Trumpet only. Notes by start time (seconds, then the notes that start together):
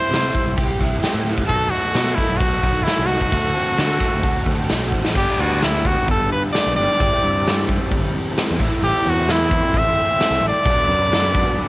Already playing: C5
1.48 A4
1.70 F#4
2.15 E4
2.37 F#4
2.83 E4
3.06 F#4
5.17 G4
5.40 F#4
5.64 E4
5.87 F#4
6.11 A4
6.32 B4
6.53 D5
6.76 D5
8.84 G4
9.09 F#4
9.31 E4
9.78 E5
10.48 D5